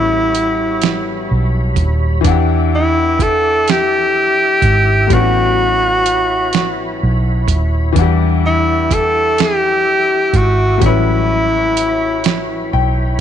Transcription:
0.00 1.26 A1 loud
0.00 2.18 A2 medium
0.00 2.19 G3 medium
0.00 2.20 G3 medium
0.00 2.21 B3 medium
0.00 2.22 C#4 medium
0.00 1.31 E4 medium
0.00 2.23 F#4 medium
0.00 2.21 C#5 medium
0.00 2.21 B5 medium
0.35 closed hi-hat medium
0.82 snare loud
0.82 closed hi-hat medium
1.31 1.74 B1 medium
1.76 2.21 D#1 loud
1.76 kick medium
1.76 closed hi-hat medium
2.21 5.04 E3 medium
2.21 5.06 D4 medium
2.21 13.21 E4 medium
2.21 5.07 E5 medium
2.21 5.07 D6 medium
2.21 kick loud
2.21 closed hi-hat medium
2.25 4.59 E2 loud
2.25 5.07 F#5 medium
2.30 5.09 G4 medium
2.75 3.24 E4 medium
3.19 3.72 A4 loud
3.19 kick loud
3.19 closed hi-hat medium
3.68 5.15 G4 loud
3.68 snare loud
3.68 closed hi-hat medium
4.62 5.06 G#1 loud
4.62 kick medium
4.62 closed hi-hat medium
5.07 6.97 A1 loud
5.07 7.90 A2 medium
5.07 7.92 G3 medium
5.07 7.93 C#5 medium
5.07 7.93 B5 medium
5.07 kick loud
5.07 closed hi-hat medium
5.12 7.93 B3 medium
5.12 7.94 C#4 medium
5.12 7.02 F#4 loud
5.16 7.95 F#4 medium
6.06 closed hi-hat medium
6.53 snare loud
6.53 closed hi-hat medium
7.03 7.45 B1 medium
7.48 7.92 D#1 loud
7.48 kick medium
7.48 closed hi-hat medium
7.93 10.76 E3 medium
7.93 10.77 D4 medium
7.93 kick loud
7.93 closed hi-hat medium
7.97 10.30 E2 loud
7.97 10.79 E5 medium
7.97 10.79 F#5 medium
7.97 10.79 D6 medium
8.01 10.78 G3 medium
8.46 8.95 E4 medium
8.91 9.43 A4 loud
8.91 kick loud
8.91 closed hi-hat medium
9.38 10.38 G4 loud
9.38 snare loud
9.38 closed hi-hat medium
10.33 10.78 G#1 medium
10.33 10.83 F#4 medium
10.33 kick medium
10.33 closed hi-hat medium
10.78 13.21 A2 medium
10.78 13.21 G3 medium
10.78 kick loud
10.82 12.68 A1 loud
10.82 13.21 F#3 medium
10.82 13.21 C#4 medium
10.82 13.21 C#5 medium
10.82 13.21 B5 medium
10.82 closed hi-hat medium
10.86 12.70 E4 medium
10.86 13.21 B4 medium
11.77 closed hi-hat medium
12.24 snare loud
12.24 closed hi-hat medium
12.73 13.16 B1 medium
12.73 13.17 G5 medium

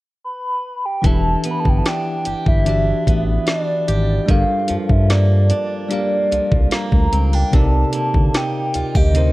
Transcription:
0.25 0.87 B5 loud
0.86 1.08 G5 loud
1.02 1.36 E1 loud
1.02 2.51 E3 medium
1.02 4.29 E3 medium
1.02 2.51 D4 medium
1.02 2.52 E4 medium
1.02 2.53 G4 medium
1.02 1.52 A5 loud
1.02 kick loud
1.02 closed hi-hat medium
1.07 2.53 E5 medium
1.44 3.06 B3 medium
1.44 closed hi-hat medium
1.51 1.61 B5 medium
1.60 1.70 A5 medium
1.65 1.81 G1 medium
1.65 1.80 G5 medium
1.65 kick medium
1.78 1.89 A5 loud
1.85 2.66 D4 medium
1.85 2.47 G5 loud
1.85 snare loud
1.85 closed hi-hat medium
2.25 2.35 G1 medium
2.25 3.88 G4 medium
2.25 closed hi-hat medium
2.46 2.93 G1 medium
2.46 3.24 E5 loud
2.46 kick medium
2.64 4.13 E3 medium
2.64 4.14 D4 medium
2.64 3.47 D4 medium
2.64 4.14 F#4 medium
2.64 4.15 G4 medium
2.64 closed hi-hat medium
2.69 4.15 E5 medium
3.07 3.38 A1 loud
3.07 4.37 B3 medium
3.07 kick loud
3.07 closed hi-hat medium
3.29 3.51 E5 loud
3.47 5.50 D4 medium
3.47 4.32 D5 loud
3.47 snare loud
3.47 closed hi-hat medium
3.88 4.20 G#1 medium
3.88 4.72 G4 medium
3.88 closed hi-hat medium
4.26 4.44 G1 loud
4.26 7.53 G2 medium
4.26 5.75 G3 medium
4.26 5.76 D4 medium
4.26 5.76 A4 medium
4.26 5.77 A#4 medium
4.26 4.93 F5 loud
4.26 kick loud
4.26 closed hi-hat medium
4.31 5.77 F5 medium
4.68 4.78 G2 soft
4.68 6.30 F3 medium
4.68 closed hi-hat medium
4.89 5.52 G2 loud
4.89 5.13 E5 loud
4.89 kick medium
5.10 5.90 A#3 medium
5.10 5.92 D5 loud
5.10 snare loud
5.10 closed hi-hat medium
5.50 7.12 D4 medium
5.50 closed hi-hat medium
5.89 7.37 G3 medium
5.89 6.72 A#3 medium
5.89 7.38 D4 medium
5.89 7.38 G4 medium
5.89 7.39 A#4 medium
5.89 6.69 D5 loud
5.89 closed hi-hat medium
5.93 7.40 F5 medium
6.31 6.40 C2 soft
6.31 7.61 F3 medium
6.31 closed hi-hat medium
6.52 6.67 C2 loud
6.52 kick loud
6.71 7.93 A#3 medium
6.71 7.36 A#5 loud
6.71 snare loud
6.71 closed hi-hat medium
6.92 7.08 D2 medium
6.92 kick medium
7.12 7.44 C#2 medium
7.12 7.33 C4 medium
7.12 closed hi-hat medium
7.33 7.61 D4 medium
7.33 7.54 G5 medium
7.51 7.85 C2 loud
7.51 8.99 C3 medium
7.51 9.32 C3 medium
7.51 9.00 C4 medium
7.51 9.01 D#4 medium
7.51 9.01 A#4 medium
7.51 8.38 A5 loud
7.51 kick loud
7.51 closed hi-hat medium
7.56 9.02 D5 medium
7.92 9.32 A#3 medium
7.92 closed hi-hat medium
8.14 8.30 D2 medium
8.14 kick medium
8.34 9.14 D#4 medium
8.34 8.98 G5 loud
8.34 snare loud
8.34 closed hi-hat medium
8.74 8.83 D2 soft
8.74 8.95 F4 medium
8.74 closed hi-hat medium
8.95 9.32 D2 medium
8.95 9.32 G4 medium
8.95 9.32 D#5 loud
8.95 kick loud
9.13 9.32 C3 medium
9.13 9.32 C4 medium
9.13 9.32 D#4 medium
9.13 9.32 A#4 medium
9.13 closed hi-hat medium
9.18 9.32 C5 medium

